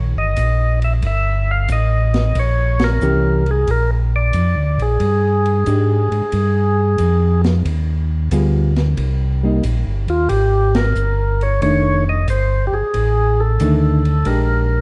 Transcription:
Already playing: tonewheel organ A#1, hollow-body jazz guitar D#3 C#4 G4
0.14 tonewheel organ G1 D#5
0.36 tonewheel organ A#1, kick, hi-hat pedal, ride
0.82 tonewheel organ E5, ride
1.02 tonewheel organ G1, kick, ride
1.07 tonewheel organ E5
1.51 tonewheel organ F5
1.68 tonewheel organ A1 D#5, kick, hi-hat pedal, ride
2.14 snare, ride
2.35 tonewheel organ A#1, kick, ride
2.39 tonewheel organ C#5
2.79 snare, ride
2.84 tonewheel organ A#4
3.01 tonewheel organ C2, hollow-body jazz guitar E3 C#4 G4 A#4, hi-hat pedal
3.46 ride
3.51 tonewheel organ G#4
3.67 tonewheel organ A#1 A#4, kick, ride
4.16 tonewheel organ D5
4.33 tonewheel organ F2, kick, hi-hat pedal, ride
4.56 tonewheel organ D2
4.77 tonewheel organ A#1, ride
4.82 tonewheel organ G#4
5.00 tonewheel organ G2, kick, ride
5.46 ride
5.66 tonewheel organ G#2, hollow-body jazz guitar G#3 D4 G4, kick, hi-hat pedal, ride
6.11 tonewheel organ G#2, ride
6.32 tonewheel organ G2, kick, ride
6.98 tonewheel organ F2, kick, hi-hat pedal, ride
7.44 snare, ride
7.65 tonewheel organ D#2, kick, ride
8.31 tonewheel organ D2, hollow-body jazz guitar G3 B3 F4 G#4, kick, hi-hat pedal, ride
8.76 snare, ride
8.97 tonewheel organ C2, kick, ride
9.43 hollow-body jazz guitar G3 A#3 D#4
9.63 tonewheel organ A#1, kick, hi-hat pedal, ride
9.86 tonewheel organ G1
10.07 tonewheel organ D#2 F4, ride
10.29 tonewheel organ G#1 G4, kick, ride
10.75 tonewheel organ A#4, snare, ride
10.95 tonewheel organ G1, hi-hat pedal
11.41 tonewheel organ C#5, ride
11.61 tonewheel organ F1 C#5, hollow-body jazz guitar D#3 A3 D4, kick, ride
12.09 tonewheel organ D#5
12.28 tonewheel organ G1 C5, kick, hi-hat pedal, ride
12.67 tonewheel organ G4
12.72 tonewheel organ G1 G#4
12.94 tonewheel organ A1, kick, ride
13.40 tonewheel organ A4
13.60 tonewheel organ D2, hollow-body jazz guitar D#3 A3 D4, kick, hi-hat pedal, ride
14.05 ride
14.25 tonewheel organ A#1 A#4, hollow-body jazz guitar G#3 D4 G4, kick, ride

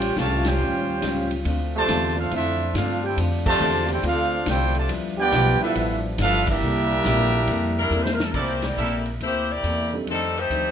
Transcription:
Already playing: upright bass A1, trombone section G3 C#4 F4 G4, trumpet section F4 C5 C#5 G5
0.02 ride
0.16 upright bass C2, hollow-body jazz guitar A2 G3 C#4 F4, trombone section C#3 F3 A3, trumpet section G4 C#5 F5 A5, snare, hi-hat pedal
0.45 trombone section G3 C#4 G4, trumpet section F4 C5 C#5 G5, snare, ride
0.59 upright bass D#2, hollow-body jazz guitar A2 G3 C#4 F4
1.02 upright bass C#2, hollow-body jazz guitar A2 G3 C#4 F4, snare, hi-hat pedal, ride
1.31 ride
1.45 upright bass D2, hollow-body jazz guitar D3 A3 C4 F4, trombone section D3 C4 D4, ride
1.76 trombone section C3 F3 A3, trumpet section F4 C5 D5 A5
1.88 upright bass E2, hollow-body jazz guitar D3 A3 C4 F4, snare, hi-hat pedal, ride
2.17 trombone section A3 C4 F4, trumpet section D4 A4 C5 F5
2.31 upright bass F2, hollow-body jazz guitar D3 A3 C4 F4, trombone section A3 C4 E4, ride
2.35 trumpet section D4 A4 C5 E5
2.74 upright bass G2, hollow-body jazz guitar D3 A3 C4 F4, trombone section A3 C4 F4, trumpet section D4 A4 C5 F5, snare, hi-hat pedal, ride
3.03 trumpet section E4 A4 C5 G5, trombone section G4
3.17 upright bass F2, hollow-body jazz guitar D3 A3 C4 F4, ride
3.46 trombone section C3 F3 A3, trumpet section F4 C5 D5 A5, kick, crash
3.60 upright bass E2, hollow-body jazz guitar D3 A3 C4 F4, hi-hat pedal
3.88 trumpet section E4 A4 C5 G5, trombone section G4, ride
4.03 upright bass D2, hollow-body jazz guitar D3 A3 C4 F4, trombone section A3 C4 F4, trumpet section D4 A4 C5, ride
4.07 trumpet section F5
4.46 upright bass C2, hollow-body jazz guitar D3 A3 C4 F4, trumpet section E4 A4 C5 G5, trombone section G4, snare, hi-hat pedal, ride
4.75 trombone section C3 F3 A3, trumpet section F4 C5 D5 A5, ride
4.89 upright bass D2, hollow-body jazz guitar G2 F3 B3 E4, trombone section F3 G3 B3, ride
5.18 trombone section B3 D4 G4, trumpet section F4 B4 D5 G5
5.32 upright bass B1, hollow-body jazz guitar G2 F3 B3 E4, snare, hi-hat pedal, ride
5.61 trombone section F3 B3 E4, trumpet section D4 A4 B4 E5
5.75 upright bass A1, hollow-body jazz guitar G2 F3 B3 E4, ride
6.18 upright bass G1, hollow-body jazz guitar G2 F3 B3 E4, trombone section B3 D4 F4, trumpet section D4 A4 B4 F5, snare, hi-hat pedal, ride
6.47 trombone section G3 A#3 E4, trumpet section D4 G4 A#4 E5, kick, crash
6.61 upright bass C2, hollow-body jazz guitar C3 A#3 E4 A4, trombone section D3 A#3 E4
7.04 upright bass A#1, hollow-body jazz guitar C3 A#3 E4 A4, snare, hi-hat pedal, ride
7.47 upright bass F2, hollow-body jazz guitar C3 A#3 E4 A4, ride
7.79 saxophone section G3 D4 E4 A#4
7.90 upright bass E2, hollow-body jazz guitar C3 A#3 E4 A4, hi-hat pedal
8.02 saxophone section C5, snare
8.14 saxophone section A#4
8.20 saxophone section A4, snare
8.30 saxophone section A#4
8.34 upright bass C2, hollow-body jazz guitar C3 A#3 E4 A4, saxophone section A#3 E4 G4 C5, trumpet section E4 A4 A#4 D5, kick, crash
8.62 saxophone section A#3 E4 G4 D5, snare, ride
8.77 upright bass A#1, hollow-body jazz guitar C3 A#3 E4 A4, trumpet section E4 A4 A#4 E5, hi-hat pedal
9.06 ride
9.20 upright bass D2, hollow-body jazz guitar C3 A#3 E4 A4, saxophone section A#3 E4 G4 C5, ride
9.52 saxophone section A#3 E4 G4 D5
9.63 upright bass E2, hollow-body jazz guitar C3 A#3 E4 A4, hi-hat pedal, ride
9.93 grand piano G3 C4 D4 D#4 A4
10.07 upright bass F2, hollow-body jazz guitar F2 D#3 A3 D4, saxophone section G3 D#4, ride
10.11 saxophone section C4 A4
10.38 saxophone section A3 D#4 G4 C5
10.50 upright bass D2, hollow-body jazz guitar F2 D#3 A3 D4, hi-hat pedal, ride

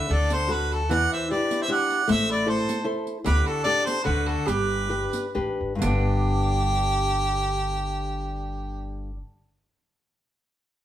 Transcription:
Already playing: harmonica E5
0.09 upright bass D2, nylon-string guitar D3, mandolin A4, harmonica D5
0.30 mandolin A4, harmonica C5, riq
0.48 nylon-string guitar D4 F#4 A4, harmonica B4, riq
0.52 mandolin F#4
0.72 mandolin F#4, harmonica A4, riq
0.89 upright bass E2, nylon-string guitar E3, mandolin D5, harmonica F#5, riq
1.12 mandolin C5, harmonica E5, riq
1.30 nylon-string guitar D4 E4 G4, mandolin B4, harmonica D5
1.51 riq
1.62 mandolin C5, harmonica E5
1.68 nylon-string guitar D4 E4 G4, mandolin D5, harmonica F#5
1.90 riq
2.08 upright bass A1, nylon-string guitar A3, mandolin C5, harmonica E5, riq
2.30 mandolin B4, harmonica D5, riq
2.46 nylon-string guitar E4 A4 C5, mandolin A4, harmonica C5
2.69 riq
2.84 nylon-string guitar E4 A4 C5
3.07 riq
3.24 upright bass D2, nylon-string guitar D3, mandolin G4, harmonica B4, riq
3.46 mandolin F#4, harmonica A4, riq
3.64 nylon-string guitar D4 G4 A4, mandolin A4, harmonica D5
3.84 mandolin A4, harmonica C5, riq
4.04 upright bass D2, nylon-string guitar D3, mandolin F#4, harmonica B4
4.26 mandolin F#4, harmonica A4, riq
4.46 upright bass G1, nylon-string guitar G3, mandolin G4, harmonica B4, riq
4.70 riq
4.89 nylon-string guitar D4 G4 B4
5.13 riq
5.35 upright bass A1, nylon-string guitar D4 G4 B4
5.61 upright bass G1
5.75 nylon-string guitar G2 D3
5.82 upright bass G1, nylon-string guitar G3, mandolin D4, harmonica G4, riq
5.86 nylon-string guitar B3 D4

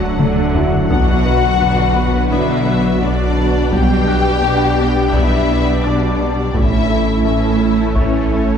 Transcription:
Already playing: sub bass D1, double bass section D2, cello section D3, french horn section D3 F#3, analog synth pad D3 F#3 A4 F#5, viola section F#3 F#4, violin section A3 A4, grand piano C#4 C#5
0.19 double bass section D2, cello section D3, viola section A3 D4, synth arpeggio sound A3, taiko mid
0.54 viola section F#3 F#4, grand piano E4 E5, taiko low
0.89 double bass section B1, sub bass B1, cello section B2, viola section F#3 D4, synth arpeggio sound B3, violin section F#4 F#5, analog synth pad B4, taiko
1.25 viola section B3 F#4, synth arpeggio sound B4
1.60 double bass section B1, cello section B2, viola section F#3 D4, synth arpeggio sound B4, taiko low
1.95 viola section B3 F#4, synth arpeggio sound B4
2.30 double bass section B1, cello section B2, viola section F#3 D4, synth arpeggio sound B3, grand piano D4 D5, violin section E4 E5, taiko
2.66 viola section B3 F#4
3.01 double bass section B1, cello section B2, viola section F#3 D4, violin section D4 D5, synth arpeggio sound F#4
3.37 viola section B3 F#4
3.71 double bass section B1, cello section B2, synth arpeggio sound G3, viola section B3 D4, french horn section B3 D4, analog synth pad B3 D4 G4 D5, violin section G4 G5, taiko
4.07 viola section G3 B3, synth arpeggio sound G4, grand piano F#6
4.42 double bass section B1, cello section B2, viola section B3 D4, synth arpeggio sound G4
4.79 viola section G3 B3, synth arpeggio sound G4
5.13 double bass section B1, cello section B2, synth arpeggio sound G3, viola section B3 D4, violin section E4 E5, taiko
5.49 viola section G3 B3
5.83 double bass section B1, cello section B2, viola section B3 D4, violin section D4 D5, synth arpeggio sound D4, grand piano D6
6.20 viola section G3 B3
6.54 double bass section A1, sub bass A1, cello section A2, viola section E3 C#4, synth arpeggio sound A3, analog synth pad A3 C#4 E4 A4, french horn section A3 C#4, violin section E4 E5, taiko
6.90 viola section A3 E4, synth arpeggio sound A4
7.24 double bass section A1, cello section A2, viola section E3 C#4, violin section E4 E5, synth arpeggio sound A4
7.60 viola section A3 E4, synth arpeggio sound A4
7.95 double bass section A1, cello section A2, viola section E3 C#4, synth arpeggio sound A3, violin section C#4 C#5, grand piano E5 C#6, taiko
8.31 viola section A3 E4

